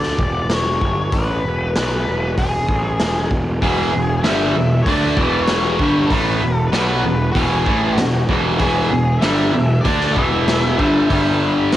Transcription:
Already playing: picked electric bass D2, lead electric guitar D5
0.03 snare
0.19 picked electric bass E1, kick
0.50 snare, open hi-hat
0.54 lead electric guitar C#5
0.81 picked electric bass G1, kick
1.12 picked electric bass A1, lead electric guitar B4, kick, open hi-hat
1.45 picked electric bass E1
1.76 picked electric bass B1, lead electric guitar B4, snare, open hi-hat
2.07 picked electric bass E1
2.38 picked electric bass E1, lead electric guitar G#4, kick, open hi-hat
2.69 picked electric bass A1, kick
3.00 picked electric bass E1, snare, open hi-hat
3.31 picked electric bass E1, kick
3.62 picked electric bass E1, distorted electric guitar E2 B2 E3, lead electric guitar G#4, kick, open hi-hat
3.93 picked electric bass E1, distorted electric guitar E2 B2
4.23 picked electric bass G1, distorted electric guitar G2 D3 G3, lead electric guitar E5, snare, open hi-hat
4.56 picked electric bass E1, distorted electric guitar E2 B2
4.83 lead electric guitar D5, kick, open hi-hat
4.87 picked electric bass D2, distorted electric guitar D3 A3 D4
5.17 picked electric bass E1, distorted electric guitar E2 B2 E3, kick
5.43 lead electric guitar C#5
5.48 snare, open hi-hat
5.79 picked electric bass G1, distorted electric guitar G2 D3 G3, kick
6.06 lead electric guitar B4
6.11 picked electric bass A1, distorted electric guitar A2 E3 A3, kick, open hi-hat
6.42 picked electric bass E1, distorted electric guitar E2 B2
6.68 picked electric bass B1, lead electric guitar B4
6.73 distorted electric guitar B2 F#3 B3, snare, open hi-hat
7.04 picked electric bass E1, distorted electric guitar E2 B2
7.32 picked electric bass E1, distorted electric guitar E2, lead electric guitar G#4, kick
7.36 distorted electric guitar B2 E3, open hi-hat
7.66 picked electric bass A1, distorted electric guitar A2 E3 A3, kick
7.97 picked electric bass E1, distorted electric guitar E2 B2, lead electric guitar F#4, snare, open hi-hat
8.29 picked electric bass E1, distorted electric guitar E2 B2 E3, kick
8.58 picked electric bass E1, distorted electric guitar E2 B2 E3, lead electric guitar G#4, kick, open hi-hat
8.90 picked electric bass E1, distorted electric guitar E2 B2
9.19 distorted electric guitar G2 D3 G3, lead electric guitar E5, snare, open hi-hat
9.23 picked electric bass G1
9.52 picked electric bass E1, distorted electric guitar E2 B2
9.81 distorted electric guitar D3, lead electric guitar D5
9.85 picked electric bass D2, distorted electric guitar A3 D4, kick, open hi-hat
10.01 snare
10.14 picked electric bass E1, distorted electric guitar E2 B2 E3, lead electric guitar E5, kick
10.48 snare, open hi-hat
10.78 picked electric bass G1, distorted electric guitar G2 D3 G3, kick
11.10 picked electric bass G1, distorted electric guitar G2 D3 G3, kick, open hi-hat
11.72 picked electric bass D2, snare, open hi-hat

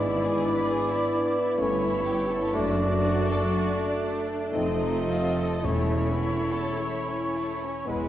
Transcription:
Already playing: double bass section G#1, cello section G#2, harp G#2 G#3 E4, bassoon B3, viola section E4, clarinet E4, violin section D5, cor anglais D5
0.00 violin section E4
0.21 harp D4, violin section G#4
0.44 harp E4, violin section B4
0.67 violin section G#4, harp B4
0.91 violin section E4, harp D5
1.15 violin section D4, harp B4
1.37 violin section E4, harp D5
1.58 double bass section G1, cello section G2, harp G2, french horn section A3 C#4, violin section C#4 C#5, viola section E4, cor anglais C#5
1.84 harp G3, violin section E4
2.05 harp C#4, violin section G4
2.31 harp E4, violin section A4
2.53 double bass section F#1, cello section F#2, harp F#2, french horn section A3 D4, violin section A3 D5, bassoon A3, viola section D4, clarinet F#4, cor anglais D5
2.79 harp F#3, violin section D4
3.03 harp D4, violin section F#4
3.28 harp F#3, violin section A4
3.51 violin section F#4, harp A4
3.78 violin section D4
4.03 violin section A3, harp A4
4.29 violin section D4, harp D5
4.52 double bass section F1, cello section F2, harp F2, french horn section A3 D#4, violin section C4 D#5, clarinet F4, cor anglais D#5
4.56 viola section C4
4.82 harp C3, violin section D#4
5.10 harp C4, violin section F4
5.36 harp D#4, violin section A4
5.63 double bass section E1, cello section E2, harp E2, timpani E2, french horn section A3 C#4, viola section E4, clarinet E4, violin section C#5, cor anglais C#5
5.68 violin section A3
5.93 harp E3, violin section C#4
6.21 harp C#4, violin section E4
6.49 harp E4, violin section A4
6.77 violin section E4, harp A4
7.04 violin section C#4, harp C#5
7.32 violin section A3, harp A4
7.60 violin section C#4, harp C#5
7.86 double bass section E1, timpani E2, harp E2, cello section E2, french horn section G#3 B3, bassoon G#3, violin section B4, cor anglais B4
7.90 violin section G#3
7.96 timpani E2
8.04 timpani E2

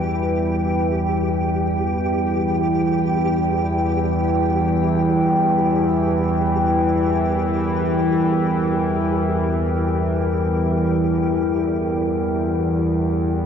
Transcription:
Already playing: synth drone E2 E3, analog synth pad G3 E4 B4 G5, synth texture G4
6.92 analog synth pad A#4

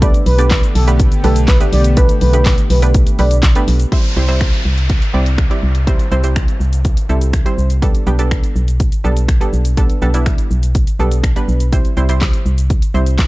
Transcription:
Already playing: fm bass C2
0.02 analog synth pad D3 A3 B3 G4, synth pluck A3 B3 D4 G4 B4, analog synth lead D5, kick, closed hi-hat, shaker
0.14 closed hi-hat, shaker
0.26 fm bass B1, analog synth lead B4, open hi-hat, shaker
0.38 synth pluck A3 B3 D4 G4 D5, closed hi-hat, shaker
0.51 kick, snare, clap, closed hi-hat, shaker
0.63 closed hi-hat, shaker
0.75 fm bass B1, analog synth lead A4, open hi-hat, shaker
0.87 synth pluck A3 B3 D4 G4 B4, closed hi-hat, shaker
1.00 kick, closed hi-hat, shaker
1.12 closed hi-hat, shaker
1.24 fm bass B1, synth pluck A3 B3 D4 G4 B4, analog synth lead A4, open hi-hat, shaker
1.36 closed hi-hat, shaker
1.48 analog synth lead B4, kick, snare, clap, closed hi-hat, shaker
1.60 synth pluck A3 B3 D4 G4 B4, closed hi-hat, shaker
1.73 fm bass B1, analog synth lead D5, open hi-hat, shaker
1.84 closed hi-hat, shaker
1.97 synth pluck A3 B3 D4 G4 B4, analog synth lead B4, kick, closed hi-hat, shaker
2.09 closed hi-hat, shaker
2.21 fm bass B1, analog synth lead B4, open hi-hat, shaker
2.33 synth pluck A3 B3 D4 G4 B4, closed hi-hat, shaker
2.46 kick, snare, clap, closed hi-hat, shaker
2.58 closed hi-hat, shaker
2.70 fm bass B1, analog synth lead B4, open hi-hat, shaker
2.82 synth pluck A3 B3 D4 G4 B4, closed hi-hat, shaker
2.94 kick, closed hi-hat, shaker
3.07 closed hi-hat, shaker
3.19 fm bass B1, synth pluck A3 B3 D4 G4 B4, analog synth lead D5, open hi-hat, shaker
3.31 closed hi-hat, shaker
3.43 kick, snare, clap, closed hi-hat, shaker
3.55 synth pluck A3 B3 D4 G4 B4, closed hi-hat, shaker
3.68 fm bass B1, open hi-hat, shaker
3.80 closed hi-hat, shaker
3.92 synth pluck G3 C4 E4 C5, kick, closed hi-hat, downlifter
4.04 closed hi-hat
4.16 fm bass C2, synth pluck G3 C4 E4 C5
4.28 synth pluck G3 C4 E4 C5, closed hi-hat
4.41 finger snap, kick, closed hi-hat
4.53 closed hi-hat
4.65 fm bass C2
4.78 closed hi-hat
4.90 kick, closed hi-hat
5.02 closed hi-hat
5.14 fm bass C2, synth pluck G3 C4 E4 D5
5.26 closed hi-hat
5.38 finger snap, kick, closed hi-hat
5.50 synth pluck G3 C4 E4 D5, closed hi-hat
5.63 fm bass C2
5.75 closed hi-hat
5.87 synth pluck G3 C4 E4 C5, kick, closed hi-hat, shaker
5.99 closed hi-hat, shaker
6.11 fm bass C2, synth pluck G3 C4 E4 C5, shaker
6.24 synth pluck G3 C4 E4 C5, closed hi-hat, shaker
6.36 finger snap, kick, closed hi-hat, shaker
6.48 closed hi-hat, shaker
6.60 fm bass C2, shaker
6.73 closed hi-hat, shaker
6.85 kick, closed hi-hat, shaker
6.97 closed hi-hat, shaker
7.09 fm bass C2, synth pluck G3 C4 E4 A4, shaker
7.21 closed hi-hat, shaker
7.33 finger snap, kick, closed hi-hat, shaker
7.46 synth pluck G3 C4 E4 C5, closed hi-hat, shaker
7.58 fm bass C2, shaker
7.70 closed hi-hat, shaker
7.82 synth pluck G3 B3 D4 A4, kick, closed hi-hat, shaker
7.95 closed hi-hat, shaker
8.07 fm bass B1, synth pluck G3 B3 D4 G4, shaker
8.19 synth pluck G3 B3 D4 A4, closed hi-hat, shaker
8.31 finger snap, kick, closed hi-hat, shaker
8.44 closed hi-hat, shaker
8.56 fm bass B1, shaker
8.68 closed hi-hat, shaker
8.80 kick, closed hi-hat, shaker
8.92 closed hi-hat, shaker
9.04 fm bass B1, synth pluck G3 B3 D4 A4, shaker
9.17 closed hi-hat, shaker
9.28 finger snap, kick, closed hi-hat, shaker
9.41 synth pluck G3 B3 D4 A4, closed hi-hat, shaker
9.53 fm bass B1, shaker
9.65 closed hi-hat, shaker
9.77 synth pluck G3 B3 D4 A4, kick, closed hi-hat, shaker
9.90 closed hi-hat, shaker
10.02 fm bass B1, synth pluck G3 B3 D4 A4, shaker
10.14 synth pluck G3 B3 D4 E4, closed hi-hat, shaker
10.26 finger snap, kick, closed hi-hat, shaker
10.38 closed hi-hat, shaker
10.51 fm bass B1, shaker
10.63 closed hi-hat, shaker
10.75 kick, closed hi-hat, shaker
10.87 closed hi-hat, shaker
10.99 fm bass B1, synth pluck G3 B3 D4 A4, shaker
11.12 closed hi-hat, shaker
11.24 finger snap, kick, closed hi-hat, shaker
11.36 synth pluck G3 B3 D4 B4, closed hi-hat, shaker
11.48 fm bass B1, shaker
11.60 closed hi-hat, shaker
11.73 synth pluck G3 C4 E4 C5, kick, closed hi-hat, shaker
11.85 closed hi-hat, shaker
11.97 fm bass C2, synth pluck G3 C4 E4 C5, shaker
12.09 synth pluck G3 C4 E4 C5, closed hi-hat, shaker
12.21 kick, snare, clap, closed hi-hat, shaker
12.33 closed hi-hat, shaker
12.46 fm bass C2, shaker
12.58 closed hi-hat, shaker
12.70 kick, closed hi-hat, shaker
12.82 closed hi-hat, shaker
12.94 fm bass C2, synth pluck G3 C4 E4 C5, shaker
13.06 closed hi-hat, shaker
13.19 kick, snare, clap, closed hi-hat, shaker

